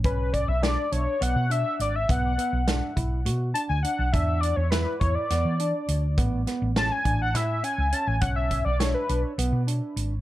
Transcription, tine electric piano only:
\new Staff \with { instrumentName = "Tine electric piano" } { \time 7/8 \key b \dorian \tempo 4 = 103 cis'4 d'8 d'8 b8 d'4 | b8 b8 d'8 e'8 fis'8 d'8 d'8 | d'4 e'8 e'8 b8 d'4 | b8 b8 cis'8 d'8 e'8 cis'8 cis'8 |
cis'4 d'8 d'8 b8 d'4 | }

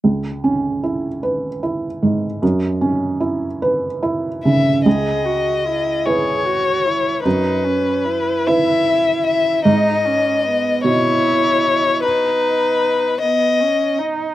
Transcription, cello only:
\new Staff \with { instrumentName = "Cello" } { \time 6/8 \key cis \dorian \tempo 4. = 50 r2. | r2. | gis'8 fis'8 e'8 gis'8 fis'8 e'8 | dis'8 cis'8 e'2 |
dis'8 cis'8 b8 e'4. | dis'4. b8 cis'8 dis'8 | }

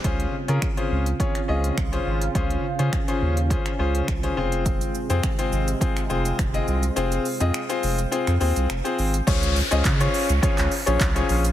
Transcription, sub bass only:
\new Staff \with { instrumentName = "Sub bass" } { \clef bass \time 4/4 \key des \lydian \tempo 4 = 104 des,8 r16 des16 r8 des,8 r8 des,8 c,8 aes,,8 | des,8 r16 des16 r8 ees,8. r16 des,8 c,8 f,,8~ | f,,8 r16 f,16 r8 aes,,8 r8 f,,8 f,,8 c,8 | f,,8 r16 f,16 r8 f,,8 r16 f,16 ees,16 c,16 f,,16 r16 aes,,8 |
des,8. des,16 des8 r16 des,16 r16 des,16 r16 bes,,16 c,8 bes,,8 | }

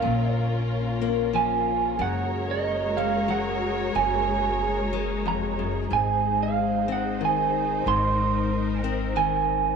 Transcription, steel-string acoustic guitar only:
\new Staff \with { instrumentName = "Steel-string acoustic guitar" } { \clef bass \time 3/4 \key ges \lydian \tempo 4 = 92 << { r4. bes4. | r4. aes4.~ | aes4. aes4.~ | aes4. c'4. |
r4. c'4. | } \\ { bes,2 f4 | ges,2 ges4 | ges,2 f,8 ges,8 | aes,2 ees4 |
aes,2 ees4 | } >> }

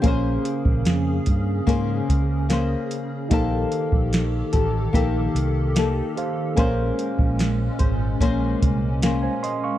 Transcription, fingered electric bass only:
\new Staff \with { instrumentName = "Fingered electric bass" } { \clef bass \time 4/4 \key bes \dorian \tempo 4 = 73 bes,,8 r16 bes,,16 f,8 g,8 aes,8 des,4 r8 | bes,,8 r16 bes,,8. a,,8 bes,,8 c,4 r8 | bes,,8 r16 bes,,8. aes,,8 bes,,8 c,4 r8 | }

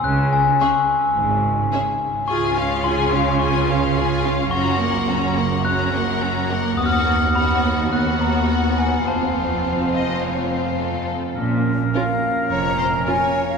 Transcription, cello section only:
\new Staff \with { instrumentName = "Cello section" } { \clef bass \time 4/4 \key cis \minor \tempo 4 = 106 cis4 r4 gis,4 r4 | \key bes \minor des1 | ges,1 | dis,1 |
f,2.~ f,8 r8 | bes,4 r4 f,4 r4 | }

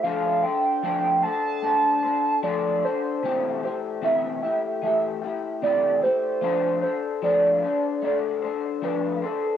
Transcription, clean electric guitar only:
\new Staff \with { instrumentName = "Clean electric guitar" } { \time 4/4 \key f \lydian \tempo 4 = 75 <f a d' a' c''>8 <d' a' c''>8 <f a d' a' c''>8 <d' a' c''>8 <a d' a' c''>8 <d' a' c''>8 <f a d' a' c''>8 <d' a' c''>8 | <c e a e' g'>8 <a e' g'>8 <c e a e' g'>8 <a e' g'>8 <e a e' g'>8 <a e' g'>8 <c e a e' g'>8 <a e' g'>8 | <f a d' a' c''>8 <d' a' c''>8 <f a d' a' c''>8 <d' a' c''>8 <a d' a' c''>8 <d' a' c''>8 <f a d' a'>8 <d' a' c''>8 | }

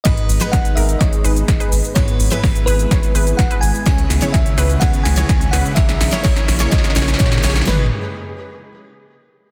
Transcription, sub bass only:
\new Staff \with { instrumentName = "Sub bass" } { \clef bass \time 4/4 \key gis \minor \tempo 4 = 126 gis,,8 gis,,8 gis,,8 gis,,8 gis,,8 gis,,8 gis,,8 gis,,8 | gis,,8 gis,,8 gis,,8 gis,,8 gis,,8 gis,,8 gis,,8 gis,,8 | cis,8 cis,8 cis,8 cis,8 cis,8 cis,8 cis,8 cis,8 | ais,,8 ais,,8 ais,,8 ais,,8 ais,,8 ais,,8 ais,8 ais,,8 |
gis,,8 r2. r8 | }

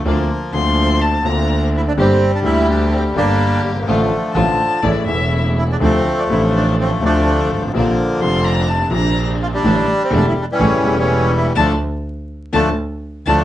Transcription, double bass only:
\new Staff \with { instrumentName = "Double bass" } { \clef bass \time 4/4 \key d \minor \tempo 4 = 125 d,8 r8 d,4. d,4. | g,,8 r8 d,4. g,,4 g,,8 | a,,8 r8 a,,8 r8 a,,8 e,,4. | d,8 r8 a,,4. d,4 gis,,8 |
bes,,8 r8 f,,4. bes,,4. | a,,8 r8 e,,8 r8 a,,8 e,,4. | d,8 r4. d,8 r4 d,8 | }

